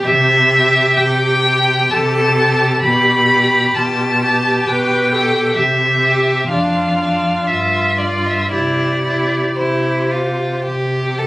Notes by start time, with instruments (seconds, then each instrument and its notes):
Already playing: viola G4
0.04 cello C3, violin E5
0.51 violin G4
0.97 cello C3, violin G5
1.45 violin G4
1.91 cello C3, viola A4, violin A5
2.38 violin G4
2.82 cello B2, viola G4, violin G4 B5
3.30 violin G4
3.74 cello B2, viola F4, violin A5
4.22 viola G4, violin G4
4.66 cello B2, viola B4, violin G5
5.13 violin G4, viola A4
5.56 cello C3, viola G4, violin E5
6.05 violin G4
6.49 cello F2, violin D4 F5, viola F4
7.00 violin D4
7.47 cello G2, violin F4 E5
7.99 violin F4 D5
8.26 violin E5
8.51 cello C3, violin E4 D5, viola G4
9.05 violin E4
9.56 cello C3, violin E4 C5
10.11 violin F4
10.66 cello C3, violin G4
11.18 violin A4